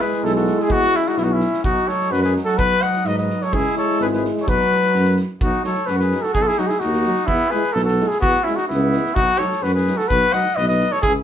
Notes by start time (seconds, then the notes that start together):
Already playing: G#3 E4
0.01 G#4 B4, snare
0.12 snare
0.24 B1 E4 A4, snare
0.36 F#4 A4, snare
0.47 snare
0.59 E4 G#4, snare
0.69 E2 B3 F#4, kick
0.82 snare
0.94 C#4 E4, snare
1.06 D#4 F#4, snare
1.16 B1 B3 E4, snare
1.23 D#4 F#4
1.31 C#4 E4
1.40 snare
1.54 snare
1.64 B1 F#3 D#4 F#4, kick
1.87 A4 C#5, snare
2.01 snare
2.11 F#2 F#4 B4, snare
2.22 G#4 B4, snare
2.36 snare
2.45 F#4 A4, snare
2.57 B1 F#4 B4, kick
2.82 D#5 F#5, snare
2.93 snare
3.04 G#2 B4 D#5, snare
3.18 B4 D#5, snare
3.29 snare
3.41 A4 C#5, snare
3.53 C#2 G#3 E4 G#4, kick
3.77 A4 C#5, snare
3.90 snare
4.00 G#1 G#4 B4, snare
4.12 G#4 B4, snare
4.25 snare
4.37 snare
4.41 A4 C#5
4.46 B1 F#3 D#4 F#4 B4, kick
4.60 snare
4.72 snare
4.83 snare
4.94 F#2, snare
5.05 snare
5.16 snare
5.41 B1 D#4 F#4, kick
5.64 F#3 D#4 A4 C#5, snare
5.74 snare
5.86 F#2 B4, snare
5.90 F#4
5.98 B4, snare
6.02 G#4
6.11 F#3 D#4, snare
6.22 F#4 A4, snare
6.34 B1 D#4 G#4, kick
6.42 F#4 A4
6.47 E4 G#4
6.57 F#3 D#4 F#4, snare
6.67 E4 G#4, snare
6.80 D#2 D#4 F#4, snare
6.93 snare
7.03 F#3 D#4, snare
7.15 snare
7.26 E2 B3 E4, kick
7.50 G#3 E4 G#4 B4, snare
7.64 snare
7.73 B1 E4 A4, snare
7.84 F#4 A4
7.88 snare
7.98 G#3 E4, snare
8.08 E4 G#4, snare
8.19 B3 F#4, kick
8.24 E2
8.34 snare
8.43 C#4 E4, snare
8.49 G#3
8.56 D#4 F#4, snare
8.68 C#2 B3 E4, snare
8.93 G#3 E4, snare
9.06 snare
9.14 B1 D#4 F#4, kick
9.39 F#3 D#4 A4 C#5, snare
9.52 snare
9.63 F#2 F#4 B4, snare
9.74 G#4 B4, snare
9.86 F#3 D#4, snare
9.96 F#4 A4, snare
10.08 B1 F#4 B4, kick
10.32 F#3 D#4 D#5 F#5, snare
10.45 snare
10.56 B1 B4 D#5, snare
10.68 B4 D#5, snare
10.79 F#3 D#4, snare
10.92 A4 C#5, snare
11.02 C#2 E4 G#4, kick